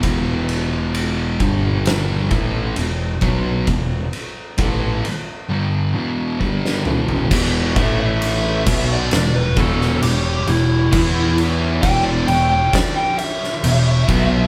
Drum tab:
CC |----------------|----------------|x-x-x-x-x-x-x-x-|x-x-x-x-x-x-x-x-|
RD |x-x-x-x-x-x-x-x-|x-x-x-x---------|----------------|----------------|
SD |--------o-------|-------------o--|--------o--o----|--------o--o----|
T2 |----------------|--------------o-|----------------|----------------|
FT |----------------|---------------o|----------------|----------------|
BD |o-----o---o---o-|o---o-------o---|o-o---o---o-----|o---o---o-----o-|